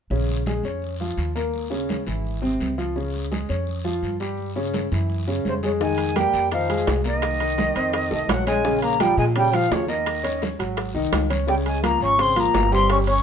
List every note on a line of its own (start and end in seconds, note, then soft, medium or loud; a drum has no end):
0.10 0.60 A#1 medium
0.10 0.40 C#3 medium
0.10 0.40 C#4 medium
0.10 high conga soft
0.10 long guiro medium
0.29 high conga soft
0.46 0.62 G#3 medium
0.46 0.61 G#4 medium
0.46 high conga medium
0.46 short guiro medium
0.63 1.14 F2 medium
0.63 0.94 C#4 medium
0.63 0.94 C#5 medium
0.63 short guiro medium
0.82 high conga soft
0.82 long guiro medium
1.00 1.29 F3 medium
1.00 1.30 F4 medium
1.00 high conga soft
1.17 2.01 D#2 medium
1.17 high conga soft
1.17 short guiro medium
1.35 1.65 A#3 medium
1.35 1.65 A#4 medium
1.35 high conga soft
1.35 short guiro medium
1.54 high conga soft
1.54 long guiro medium
1.70 2.00 C#3 medium
1.70 2.00 C#4 medium
1.70 high conga soft
1.89 high conga medium
1.89 short guiro medium
2.06 2.57 G#1 medium
2.06 2.36 E3 medium
2.06 2.36 E4 medium
2.06 high conga soft
2.06 short guiro medium
2.25 high conga soft
2.25 long guiro medium
2.42 2.71 C3 medium
2.42 2.72 C4 medium
2.42 high conga soft
2.60 3.43 C#2 medium
2.60 high conga medium
2.60 short guiro medium
2.78 2.93 F3 medium
2.78 2.93 F4 medium
2.78 short guiro medium
2.96 3.25 C#3 medium
2.96 3.25 C#4 medium
2.96 high conga soft
2.96 long guiro medium
3.15 high conga soft
3.31 3.46 G#3 medium
3.31 3.46 G#4 medium
3.31 high conga medium
3.31 short guiro medium
3.49 3.99 F2 medium
3.49 3.78 C#4 medium
3.49 3.79 C#5 medium
3.49 short guiro medium
3.67 high conga soft
3.67 long guiro medium
3.84 4.14 F3 medium
3.84 4.14 F4 medium
3.84 high conga soft
4.03 4.86 G2 medium
4.03 high conga soft
4.03 short guiro medium
4.20 4.49 G3 medium
4.20 4.50 G4 medium
4.20 high conga soft
4.20 short guiro medium
4.38 high conga soft
4.38 long guiro medium
4.56 4.85 C#3 medium
4.56 4.85 C#4 medium
4.56 high conga soft
4.74 high conga medium
4.74 short guiro medium
4.92 5.41 F#2 medium
4.92 5.21 E3 medium
4.92 5.21 E4 medium
4.92 high conga soft
4.92 short guiro medium
5.10 high conga soft
5.10 long guiro medium
5.27 5.56 C#3 medium
5.27 5.57 C#4 medium
5.27 high conga soft
5.45 6.28 F2 medium
5.45 5.55 C3 medium
5.45 5.54 C5 medium
5.45 high conga medium
5.45 short guiro medium
5.63 5.73 C#3 medium
5.63 5.77 G#3 medium
5.63 5.78 G#4 medium
5.63 5.71 C#5 medium
5.63 high conga medium
5.63 short guiro medium
5.80 6.09 D#3 medium
5.80 6.19 G#3 medium
5.80 6.10 D#4 medium
5.80 6.18 G#5 medium
5.80 high bongo medium
5.80 high conga soft
5.80 long guiro medium
5.98 high bongo soft
5.98 high conga soft
5.98 high timbale medium
6.16 6.52 G3 medium
6.16 6.46 A#3 medium
6.16 6.46 G4 medium
6.16 6.52 G5 loud
6.16 high bongo medium
6.16 high conga medium
6.16 high timbale medium
6.16 low timbale soft
6.16 short guiro medium
6.34 6.83 F2 medium
6.34 short guiro medium
6.52 6.66 D#3 medium
6.52 6.85 F3 medium
6.52 6.66 D#4 medium
6.52 6.85 F5 medium
6.52 high bongo medium
6.52 high conga soft
6.52 high timbale medium
6.52 long guiro medium
6.69 6.98 G#3 medium
6.69 6.99 G#4 medium
6.69 high bongo soft
6.69 high conga soft
6.69 high timbale medium
6.87 7.70 C2 medium
6.87 high bongo medium
6.87 low bongo medium
6.87 high conga soft
6.87 low timbale medium
6.87 short guiro medium
7.04 8.30 D#3 medium
7.04 7.34 A#3 medium
7.04 7.34 A#4 medium
7.04 8.31 D#5 loud
7.04 high bongo soft
7.04 high conga soft
7.04 short guiro medium
7.22 high bongo medium
7.22 high conga soft
7.22 high timbale medium
7.22 long guiro medium
7.40 7.69 D#4 medium
7.40 7.70 D#5 medium
7.40 high bongo soft
7.40 high conga soft
7.40 high timbale medium
7.58 high bongo medium
7.58 high conga medium
7.58 low timbale medium
7.58 short guiro medium
7.75 8.09 F2 medium
7.75 8.05 C4 medium
7.75 8.05 C5 medium
7.75 high timbale medium
7.75 short guiro medium
7.93 high bongo medium
7.93 high conga soft
7.93 high timbale medium
7.93 long guiro medium
8.11 8.28 C2 medium
8.11 8.40 A3 medium
8.11 8.40 A4 medium
8.11 high bongo soft
8.11 high conga soft
8.29 9.12 A#1 medium
8.29 8.47 F#3 medium
8.29 8.47 F#5 medium
8.29 high bongo medium
8.29 low bongo medium
8.29 high conga medium
8.29 high timbale loud
8.29 low timbale medium
8.29 short guiro medium
8.46 8.80 G#3 medium
8.46 8.61 C#4 medium
8.46 8.61 C#5 medium
8.46 8.80 G#5 loud
8.46 high conga medium
8.46 high timbale medium
8.46 short guiro medium
8.64 8.93 C#3 medium
8.64 8.94 C#4 medium
8.64 high bongo medium
8.64 high conga soft
8.64 long guiro medium
8.82 9.02 A#3 medium
8.82 9.02 A#5 loud
8.82 high bongo soft
8.82 high conga soft
8.82 high timbale medium
9.00 9.30 F3 medium
9.00 9.17 G3 medium
9.00 9.30 F4 medium
9.00 9.18 G5 loud
9.00 high bongo medium
9.00 high conga medium
9.00 high timbale medium
9.00 low timbale medium
9.00 short guiro medium
9.17 9.67 A#2 loud
9.17 9.26 G#3 medium
9.17 9.25 G#5 loud
9.17 short guiro medium
9.36 9.50 C#3 medium
9.36 9.55 G3 loud
9.36 9.50 C#4 medium
9.36 9.57 G5 medium
9.36 high bongo medium
9.36 high conga soft
9.36 high timbale medium
9.36 long guiro medium
9.53 9.72 F3 medium
9.53 9.82 F3 medium
9.53 9.83 F4 medium
9.53 9.74 F5 medium
9.53 high bongo soft
9.53 high conga soft
9.53 high timbale medium
9.71 10.54 D#2 medium
9.71 9.91 C#3 medium
9.71 9.91 C#5 medium
9.71 high bongo medium
9.71 low bongo medium
9.71 high conga soft
9.71 low timbale medium
9.71 short guiro medium
9.88 10.42 D#3 medium
9.88 10.17 A#3 medium
9.88 10.17 A#4 medium
9.88 10.42 D#5 medium
9.88 high bongo soft
9.88 high conga soft
9.88 short guiro medium
10.06 high bongo medium
10.06 high conga soft
10.06 high timbale medium
10.06 long guiro medium
10.23 10.53 C#4 medium
10.23 10.53 C#5 medium
10.23 high bongo soft
10.23 high conga soft
10.23 high timbale medium
10.42 high bongo medium
10.42 high conga medium
10.42 low timbale medium
10.42 short guiro medium
10.59 10.92 G#1 medium
10.59 10.88 F#3 medium
10.59 10.89 F#4 medium
10.59 high conga soft
10.59 high timbale medium
10.59 short guiro medium
10.77 high bongo medium
10.77 high conga soft
10.77 high timbale medium
10.77 long guiro medium
10.94 11.11 C2 medium
10.94 11.24 D#3 medium
10.94 11.24 D#4 medium
10.94 high bongo soft
10.94 high conga soft
11.12 11.95 C#2 medium
11.12 high bongo medium
11.12 low bongo medium
11.12 high conga medium
11.12 high timbale loud
11.12 low timbale medium
11.12 short guiro medium
11.30 11.45 C#4 medium
11.30 11.45 C#5 medium
11.30 high conga medium
11.30 high timbale medium
11.30 short guiro medium
11.47 11.77 C#3 medium
11.47 11.56 G3 medium
11.47 11.77 C#4 medium
11.47 11.55 G5 medium
11.47 high bongo medium
11.47 high conga soft
11.47 long guiro medium
11.66 11.83 G#3 medium
11.66 11.83 G#5 medium
11.66 high bongo soft
11.66 high conga soft
11.66 high timbale medium
11.83 12.12 F3 medium
11.83 12.00 A#3 medium
11.83 12.12 F4 medium
11.83 12.01 A#5 loud
11.83 high bongo medium
11.83 high conga medium
11.83 high timbale medium
11.83 low timbale soft
11.83 short guiro medium
12.01 12.50 G#1 medium
12.01 12.22 C#4 medium
12.01 12.22 C#6 loud
12.01 short guiro medium
12.18 12.33 C#3 medium
12.18 12.39 C4 medium
12.18 12.33 C#4 medium
12.18 12.41 C6 loud
12.18 high bongo medium
12.18 high conga soft
12.18 high timbale medium
12.18 long guiro medium
12.36 12.65 F3 medium
12.36 12.72 A#3 medium
12.36 12.66 F4 medium
12.36 12.73 A#5 loud
12.36 high bongo soft
12.36 high conga soft
12.36 high timbale medium
12.54 13.23 G1 medium
12.54 high bongo medium
12.54 low bongo medium
12.54 high conga soft
12.54 low timbale medium
12.54 short guiro medium
12.72 13.01 G3 medium
12.72 12.89 C4 medium
12.72 13.01 G4 medium
12.72 12.90 C6 loud
12.72 high bongo soft
12.72 high conga soft
12.72 short guiro medium
12.90 12.99 C#4 medium
12.90 12.97 C#6 medium
12.90 high bongo medium
12.90 high conga soft
12.90 high timbale medium
12.90 long guiro medium
13.07 13.23 C#4 medium
13.07 13.23 C#5 medium
13.07 13.23 C#6 loud
13.07 high bongo soft
13.07 high conga soft
13.07 high timbale medium